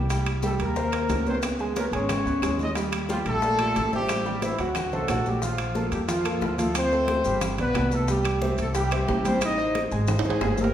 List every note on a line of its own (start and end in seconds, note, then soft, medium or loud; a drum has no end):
0.00 0.54 C2 medium
0.10 0.37 G3 medium
0.10 0.38 G4 medium
0.10 0.38 G5 medium
0.10 high bongo medium
0.10 high conga soft
0.10 high timbale medium
0.10 maracas medium
0.26 high bongo soft
0.26 high conga soft
0.26 high timbale medium
0.26 claves medium
0.26 maracas soft
0.43 0.70 G3 medium
0.43 0.51 A3 medium
0.43 0.70 G4 medium
0.43 0.51 A4 medium
0.43 0.70 G5 medium
0.43 high bongo medium
0.43 high conga medium
0.43 maracas medium
0.59 1.06 D#2 medium
0.59 1.23 A#3 medium
0.59 1.23 A#4 medium
0.59 high conga soft
0.59 high timbale medium
0.59 maracas soft
0.76 0.90 A#3 medium
0.76 0.90 A#4 medium
0.76 0.90 C5 medium
0.76 high bongo medium
0.76 high conga soft
0.76 maracas medium
0.92 1.20 A#3 medium
0.92 1.21 A#4 medium
0.92 1.21 C5 medium
0.92 high bongo soft
0.92 high conga soft
0.92 high timbale medium
0.92 claves medium
0.92 maracas soft
1.09 1.87 C#2 medium
1.09 high bongo soft
1.09 low bongo medium
1.09 high conga medium
1.09 high timbale medium
1.09 low timbale medium
1.09 maracas medium
1.26 1.54 B3 medium
1.26 1.35 C4 medium
1.26 1.54 B4 medium
1.26 1.35 C5 medium
1.26 1.54 C#5 medium
1.26 high bongo soft
1.26 high conga medium
1.26 maracas soft
1.42 high bongo medium
1.42 high conga soft
1.42 high timbale medium
1.42 claves medium
1.42 maracas medium
1.59 1.74 G#3 medium
1.59 1.74 G#4 medium
1.59 1.74 G#5 medium
1.59 high bongo soft
1.59 high conga soft
1.59 maracas soft
1.76 1.84 A#3 medium
1.76 1.90 B3 medium
1.76 1.84 A#4 medium
1.76 1.90 B4 medium
1.76 1.90 C#5 medium
1.76 high bongo medium
1.76 high conga loud
1.76 high timbale medium
1.76 maracas medium
1.92 2.23 G#1 medium
1.92 2.20 G#3 medium
1.92 2.56 C#4 medium
1.92 2.20 G#4 medium
1.92 2.55 C#5 medium
1.92 2.20 G#5 medium
1.92 high timbale medium
1.92 maracas soft
2.09 high bongo medium
2.09 high conga soft
2.09 low conga medium
2.09 high timbale medium
2.09 claves medium
2.09 maracas medium
2.25 2.41 C#2 medium
2.25 2.39 B3 medium
2.25 2.40 B4 medium
2.25 2.40 C#5 medium
2.25 high bongo soft
2.25 high conga soft
2.25 maracas soft
2.42 3.20 D#2 medium
2.42 2.70 G#3 medium
2.42 2.70 G#4 medium
2.42 2.70 G#5 medium
2.42 high bongo soft
2.42 low bongo medium
2.42 high conga medium
2.42 high timbale medium
2.42 low timbale medium
2.42 claves medium
2.42 maracas medium
2.59 2.68 D#4 medium
2.59 2.69 D#5 loud
2.59 high bongo soft
2.59 high conga medium
2.59 maracas soft
2.75 3.03 G3 medium
2.75 3.03 G4 medium
2.75 3.03 G5 medium
2.75 high bongo medium
2.75 high conga soft
2.75 high timbale medium
2.75 maracas medium
2.92 high bongo soft
2.92 high conga soft
2.92 high timbale loud
2.92 claves medium
2.92 maracas soft
3.09 3.18 F3 medium
3.09 3.37 G3 medium
3.09 3.17 F4 medium
3.09 3.37 G4 medium
3.09 3.37 G5 medium
3.09 high bongo medium
3.09 high conga medium
3.09 maracas medium
3.25 3.72 A#1 loud
3.25 3.89 A3 medium
3.25 3.89 A4 loud
3.25 high conga soft
3.25 high timbale medium
3.25 maracas soft
3.42 3.56 A#3 medium
3.42 3.56 A#4 medium
3.42 3.57 D5 medium
3.42 high bongo medium
3.42 high conga soft
3.42 maracas medium
3.59 3.86 A#2 medium
3.59 3.87 G4 medium
3.59 3.87 D5 medium
3.59 high bongo soft
3.59 high conga soft
3.59 high timbale medium
3.59 claves medium
3.59 maracas soft
3.76 4.53 A1 medium
3.76 high bongo soft
3.76 low bongo medium
3.76 high conga medium
3.76 high timbale medium
3.76 maracas medium
3.92 4.40 G3 medium
3.92 4.20 C4 medium
3.92 4.40 G4 loud
3.92 4.20 C5 medium
3.92 4.20 E5 medium
3.92 high bongo soft
3.92 high conga medium
3.92 maracas soft
4.09 high bongo medium
4.09 high conga soft
4.09 high timbale loud
4.09 claves medium
4.09 maracas medium
4.25 4.39 G3 medium
4.25 4.39 G4 medium
4.25 4.40 G5 medium
4.25 high bongo soft
4.25 maracas soft
4.42 4.60 E3 medium
4.42 4.56 C4 medium
4.42 4.59 E4 medium
4.42 4.56 C5 medium
4.42 4.56 E5 medium
4.42 high bongo medium
4.42 high conga medium
4.42 high timbale medium
4.42 maracas medium
4.59 4.90 D2 medium
4.59 4.87 F#3 medium
4.59 5.26 F#3 medium
4.59 4.87 F#4 medium
4.59 5.27 F#4 medium
4.59 4.87 F#5 medium
4.59 high timbale medium
4.59 maracas soft
4.75 high bongo medium
4.75 high conga soft
4.75 low conga medium
4.75 high timbale medium
4.75 claves medium
4.75 maracas medium
4.92 5.08 C2 medium
4.92 5.06 A3 medium
4.92 5.24 A3 medium
4.92 5.24 A4 medium
4.92 5.06 A4 medium
4.92 5.06 C5 medium
4.92 high bongo soft
4.92 high conga soft
4.92 low conga medium
4.92 maracas soft
5.08 5.86 A#1 medium
5.08 5.36 F#3 medium
5.08 5.36 F#4 medium
5.08 5.37 F#5 medium
5.08 high bongo soft
5.08 low bongo medium
5.08 high conga medium
5.08 high timbale medium
5.08 low timbale medium
5.08 claves medium
5.08 maracas medium
5.26 5.43 G3 medium
5.26 5.42 G4 medium
5.26 high bongo soft
5.26 high conga medium
5.26 maracas soft
5.42 5.70 F3 medium
5.42 5.89 F3 medium
5.42 5.88 F4 medium
5.42 5.70 F4 medium
5.42 5.70 F5 medium
5.42 high bongo medium
5.42 maracas medium
5.58 high conga soft
5.58 high timbale medium
5.58 claves medium
5.58 maracas soft
5.75 6.03 A#3 medium
5.75 6.03 A4 medium
5.75 6.03 A#4 medium
5.75 high bongo medium
5.75 high conga medium
5.75 maracas soft
5.92 6.38 F2 medium
5.92 6.01 G3 medium
5.92 5.99 G4 medium
5.92 high conga soft
5.92 high timbale medium
5.92 maracas medium
6.08 6.22 F3 medium
6.08 6.56 F3 medium
6.08 6.22 F4 medium
6.08 6.55 F4 medium
6.08 6.22 F5 medium
6.08 high bongo medium
6.08 high conga soft
6.08 high timbale medium
6.08 maracas medium
6.24 6.52 A#3 medium
6.24 6.53 A4 medium
6.24 6.53 A#4 medium
6.24 high conga soft
6.24 high timbale medium
6.24 claves medium
6.24 maracas soft
6.41 7.19 D2 medium
6.41 high bongo medium
6.41 low bongo medium
6.41 high conga medium
6.41 maracas soft
6.58 6.86 F3 medium
6.58 6.75 A3 medium
6.58 6.86 F4 medium
6.58 6.74 A4 medium
6.58 6.86 F5 medium
6.58 high conga medium
6.58 high timbale medium
6.58 maracas medium
6.75 7.39 C4 medium
6.75 7.38 C5 loud
6.75 high bongo medium
6.75 high conga soft
6.75 high timbale loud
6.75 claves medium
6.75 maracas loud
6.92 7.20 A3 medium
6.92 7.20 A4 medium
6.92 7.20 C5 medium
6.92 high conga soft
6.92 maracas soft
7.08 high bongo medium
7.08 high conga medium
7.08 high timbale medium
7.08 maracas soft
7.24 7.56 G1 medium
7.24 7.53 G3 medium
7.24 7.53 G4 medium
7.24 7.53 G5 medium
7.24 high bongo soft
7.24 high conga soft
7.24 maracas medium
7.41 high bongo medium
7.41 high conga soft
7.41 low conga medium
7.41 high timbale medium
7.41 claves medium
7.41 maracas medium
7.58 7.73 B1 medium
7.58 7.90 B3 medium
7.58 7.73 B3 medium
7.58 7.90 B4 loud
7.58 7.73 B4 medium
7.58 7.73 D5 medium
7.58 high bongo soft
7.58 high conga soft
7.58 low conga medium
7.58 high timbale medium
7.58 maracas soft
7.74 8.52 C2 medium
7.74 8.03 B3 medium
7.74 8.03 B4 medium
7.74 8.03 D5 medium
7.74 high bongo medium
7.74 low bongo medium
7.74 high conga medium
7.74 high timbale medium
7.74 low timbale medium
7.74 claves medium
7.74 maracas soft
7.91 8.09 A3 medium
7.91 8.09 A4 medium
7.91 high bongo soft
7.91 high conga medium
7.91 maracas medium
8.08 8.36 G3 medium
8.08 8.55 G3 medium
8.08 8.36 G4 medium
8.08 8.55 G4 medium
8.08 8.36 G5 medium
8.08 high bongo medium
8.08 high conga soft
8.08 maracas loud
8.25 high conga soft
8.25 high timbale loud
8.25 claves medium
8.25 maracas soft
8.42 8.70 C4 medium
8.42 8.70 C5 medium
8.42 8.70 E5 medium
8.42 high bongo medium
8.42 high conga loud
8.42 maracas soft
8.58 9.05 C2 medium
8.58 8.67 A3 medium
8.58 8.67 A4 medium
8.58 high conga soft
8.58 high timbale medium
8.58 maracas medium
8.74 9.22 G3 medium
8.74 8.89 G3 medium
8.74 8.89 G4 medium
8.74 9.22 G4 medium
8.74 8.89 G5 medium
8.74 high bongo medium
8.74 high timbale medium
8.74 maracas medium
8.91 9.19 C4 medium
8.91 9.19 C5 medium
8.91 9.20 E5 medium
8.91 high conga soft
8.91 high timbale loud
8.91 claves medium
8.91 maracas soft
9.08 9.86 A1 medium
9.08 high bongo medium
9.08 low bongo medium
9.08 high conga medium
9.08 low timbale medium
9.08 maracas soft
9.24 9.52 G3 medium
9.24 9.42 C4 medium
9.24 9.52 G4 medium
9.24 9.42 C5 loud
9.24 9.53 G5 medium
9.24 high conga medium
9.24 high timbale medium
9.24 maracas medium
9.41 9.79 D#4 medium
9.41 9.79 D#5 loud
9.41 high bongo medium
9.41 high conga soft
9.41 high timbale loud
9.41 claves medium
9.41 maracas medium
9.57 9.85 C4 medium
9.57 9.85 C5 medium
9.57 9.86 D#5 medium
9.57 high conga soft
9.57 maracas soft
9.75 high bongo soft
9.75 high conga medium
9.75 high timbale medium
9.75 maracas soft
9.91 10.23 G#1 loud
9.91 10.19 G#3 medium
9.91 10.19 G#4 medium
9.91 10.19 G#5 medium
9.91 high bongo soft
9.91 high conga soft
9.91 maracas medium
10.07 high bongo medium
10.07 high conga soft
10.07 low conga medium
10.07 high timbale medium
10.07 claves medium
10.07 maracas medium
10.19 high timbale loud
10.24 10.40 G#1 medium
10.24 10.57 G#3 medium
10.24 10.38 C4 medium
10.24 10.57 G#4 loud
10.24 10.39 C5 medium
10.24 10.39 D#5 medium
10.24 high bongo soft
10.24 high conga soft
10.24 low conga medium
10.24 maracas soft
10.30 high timbale loud
10.41 10.74 G1 medium
10.41 10.69 C4 medium
10.41 10.69 C5 medium
10.41 10.69 D#5 medium
10.41 high bongo medium
10.41 low bongo medium
10.41 high conga medium
10.41 low timbale medium
10.41 claves medium
10.41 maracas soft
10.58 10.74 A#3 medium
10.58 10.74 A#4 medium
10.58 high bongo soft
10.58 high conga medium
10.58 maracas medium
10.64 low timbale medium